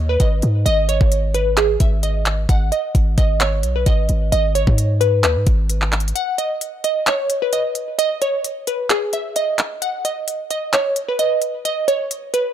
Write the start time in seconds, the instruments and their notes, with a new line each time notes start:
Already playing: 808-style bass D#2
0.09 synth pluck B4
0.20 808-style bass G#1, synth pluck D#5, kick, closed hi-hat
0.42 808-style bass G#2, closed hi-hat
0.66 808-style bass G#1, synth pluck D#5, closed hi-hat
0.89 synth pluck C#5, closed hi-hat
1.01 808-style bass G#1, kick
1.12 closed hi-hat
1.34 synth pluck B4, closed hi-hat
1.57 synth pluck G#4, clap, closed hi-hat
1.80 808-style bass G#1, synth pluck E5, kick, closed hi-hat
2.03 synth pluck D#5, closed hi-hat
2.26 clap, closed hi-hat
2.49 808-style bass G#1, synth pluck F#5, kick, closed hi-hat
2.72 synth pluck D#5, closed hi-hat
2.95 808-style bass G#1, kick, closed hi-hat
3.18 808-style bass G#1, synth pluck D#5, kick, closed hi-hat
3.40 synth pluck C#5, clap, closed hi-hat
3.63 808-style bass B1, closed hi-hat
3.76 synth pluck B4
3.86 808-style bass G#1, synth pluck D#5, kick, closed hi-hat
4.09 808-style bass G#1, closed hi-hat
4.32 808-style bass G#1, synth pluck D#5, closed hi-hat
4.55 synth pluck C#5, closed hi-hat
4.67 808-style bass G#2, kick
4.78 closed hi-hat
5.01 synth pluck B4, closed hi-hat
5.24 808-style bass D#2, synth pluck B4, clap, closed hi-hat
5.36 808-style bass G#2
5.47 808-style bass G#1, kick, closed hi-hat
5.70 closed hi-hat
5.82 clap
5.93 clap, closed hi-hat
6.00 closed hi-hat
6.08 closed hi-hat
6.15 synth pluck F#5, closed hi-hat
6.38 synth pluck D#5, closed hi-hat
6.61 closed hi-hat
6.84 synth pluck D#5, closed hi-hat
7.07 synth pluck C#5, clap, closed hi-hat
7.30 closed hi-hat
7.42 synth pluck B4
7.53 synth pluck D#5, closed hi-hat
7.75 closed hi-hat
7.99 synth pluck D#5, closed hi-hat
8.22 synth pluck C#5, closed hi-hat
8.44 closed hi-hat
8.67 synth pluck B4, closed hi-hat
8.90 synth pluck G#4, clap, closed hi-hat
9.13 synth pluck E5, closed hi-hat
9.36 synth pluck D#5, closed hi-hat
9.58 clap, closed hi-hat
9.82 synth pluck F#5, closed hi-hat
10.05 synth pluck D#5, closed hi-hat
10.28 closed hi-hat
10.51 synth pluck D#5, closed hi-hat
10.73 synth pluck C#5, clap, closed hi-hat
10.96 closed hi-hat
11.08 synth pluck B4
11.19 synth pluck D#5, closed hi-hat
11.42 closed hi-hat
11.65 synth pluck D#5, closed hi-hat
11.88 synth pluck C#5, closed hi-hat
12.11 closed hi-hat
12.34 synth pluck B4, closed hi-hat